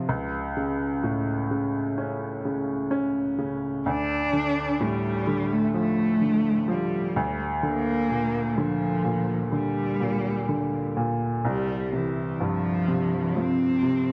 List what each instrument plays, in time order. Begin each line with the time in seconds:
Already playing: upright piano C3 F3
0.09 upright piano C#2
0.57 upright piano C#3
1.03 upright piano A2
1.51 upright piano C#3
1.98 upright piano C#4
2.45 upright piano C#3
2.91 upright piano C#4
3.38 upright piano C#3
3.86 upright piano D2, cello D4
4.33 upright piano D3
4.80 upright piano A2, cello G3
5.27 upright piano D3
5.53 cello A3
5.74 upright piano F3, cello A3
6.21 upright piano D3
6.68 upright piano F3, cello G3
7.16 upright piano D2
7.63 upright piano D3, cello A#3
8.10 upright piano A#2
8.58 upright piano D3, cello F3
9.05 upright piano A#2
9.52 upright piano D3, cello G3
10.01 upright piano A#2
10.49 upright piano D3
10.97 upright piano A#2
11.45 upright piano C2, cello G3
11.93 upright piano C3, cello E3
12.40 upright piano G2, cello F3
12.88 upright piano C3
13.35 upright piano F3
13.40 cello C4
13.83 upright piano C3